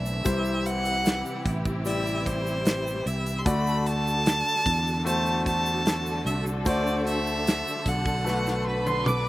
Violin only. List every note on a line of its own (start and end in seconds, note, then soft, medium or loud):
0.00 0.67 E5 medium
0.66 1.46 F#5 loud
1.87 2.27 E5 medium
2.26 3.08 C5 loud
3.07 3.40 E5 medium
3.39 3.46 C6 medium
3.45 3.88 B5 loud
3.86 5.05 A5 loud
5.06 5.43 A5 loud
5.46 6.22 A5 loud
6.26 6.44 E5 medium
6.67 7.04 D5 loud
7.08 7.90 E5 loud
7.88 8.67 F#5 medium
8.68 9.29 B4 loud